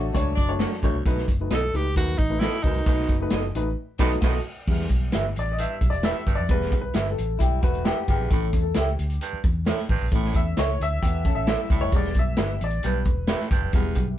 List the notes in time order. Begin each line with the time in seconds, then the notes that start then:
Already playing: A1 A3 F#4
0.13 C#2 F#3 A3 C#4 D4 F#4 C#5, kick, closed hi-hat
0.36 F#1 D4 D5, kick, closed hi-hat
0.49 A3 D4 F#4 C#5
0.60 A3 D4 F#4 C#5, snare, closed hi-hat
0.72 snare
0.83 A1 D2 A3 D4 F#4 C#5, kick, closed hi-hat
0.94 C2
1.05 B1 B2 A3 D#4 F#4 B4, kick, closed hi-hat
1.18 snare
1.28 F#1, kick, closed hi-hat
1.40 A3 D#4 F#4 B4
1.50 B1 B3 F#4 A4 D#5, snare, closed hi-hat
1.74 C#2 A3 D#4 F#4 G4 B4, closed hi-hat
1.96 D#2 F#2 A3 D#4 F#4 B4, kick, closed hi-hat
2.18 A1 D#4, kick, closed hi-hat
2.29 A3 D#4 F#4 B4
2.40 A2 B3 E4 F#4 A4 D#5, snare, closed hi-hat
2.53 snare
2.63 C#2 F#2 A3 D#4 F#4 B4, kick, open hi-hat
2.76 C2
2.86 B1 B2 A3 D#4 F#4 B4, kick, closed hi-hat
2.99 snare
3.09 F#1, kick, closed hi-hat
3.21 A3 D#4 F#4 B4
3.30 F#1 B3 F#4 A4 D#5, snare, closed hi-hat
3.55 A1 A3 D#4 F#4 B4, closed hi-hat
3.99 B1 A2 F#3 A3 B3 D#4 F#4 A4 B4 D#5, kick, snare, crash
4.21 B1 A2 A3 B3 F#4 A4 D#5, kick, snare, crash
4.68 E2 G3 B3 E4, kick, crash
4.79 snare
4.89 B1, kick, closed hi-hat
5.12 G1 E4 G4 B4 E5, snare, closed hi-hat
5.36 A1 D5, closed hi-hat
5.52 D#5
5.58 G2 E5, closed hi-hat
5.81 B1, kick, closed hi-hat
5.90 E1 D5, closed hi-hat
6.03 A2 E4 G4 B4 E5, snare, closed hi-hat
6.26 G1 G2, kick, closed hi-hat
6.35 F2 D5
6.49 E1 E2 G3 B3 E4 B4, kick, closed hi-hat
6.61 snare
6.72 B1, kick, closed hi-hat
6.81 B4
6.94 G1 E4 G4 B4 E5, snare, closed hi-hat
7.03 B4
7.11 A4
7.18 A1, closed hi-hat
7.39 B1 G3 E4 G4, kick, closed hi-hat
7.62 E1 A3 F#4 B4, kick, closed hi-hat
7.74 closed hi-hat
7.85 B3 E4 G4 B4 E5, snare, closed hi-hat
8.08 G1 E2 G4, kick, closed hi-hat
8.20 A#1
8.30 A1 A2 A3 C#4 E4 A4, kick, closed hi-hat
8.53 E2, kick, closed hi-hat
8.62 A4
8.74 C#2 E4 G4 A4 C#5 E5, snare, closed hi-hat
8.99 D2, closed hi-hat
9.10 closed hi-hat
9.21 G2, closed hi-hat
9.33 muted fingered electric bass stroke
9.44 E2, kick, closed hi-hat
9.66 A2 E4 A4 C#5 E5, snare, closed hi-hat
9.79 snare
9.89 A1 G2, kick, open hi-hat
10.01 A#1
10.12 A1 A2 A3 C#4 E4, kick, closed hi-hat
10.24 snare
10.34 E2 E5, kick, closed hi-hat
10.57 C#2 E4 A4 C#5 E5, snare, closed hi-hat
10.80 D2 E5, closed hi-hat
11.03 E2 B3 G4, kick, closed hi-hat
11.25 C#4 A4, kick, closed hi-hat
11.35 A1 E5
11.47 G3 E4 A4 C#5 E5, snare, closed hi-hat
11.70 C#2 A2, kick, closed hi-hat
11.81 F1 C#5
11.92 E1 E2 G3 B3 E4, kick, closed hi-hat
11.96 D5
12.04 snare
12.14 B1, kick, closed hi-hat
12.19 E5
12.37 G1 E4 G4 B4 E5, snare, closed hi-hat
12.61 A1 D5, closed hi-hat
12.70 closed hi-hat
12.83 B1 G2 G3 B3 E4, closed hi-hat
12.87 B4
13.05 E1, kick, closed hi-hat
13.28 A2 E4 G4 B4 E5, snare, closed hi-hat
13.40 snare
13.51 G1 G2, kick, closed hi-hat
13.62 F1
13.73 E1 E2 G3 B3 E4, kick, closed hi-hat
13.95 B1, kick, closed hi-hat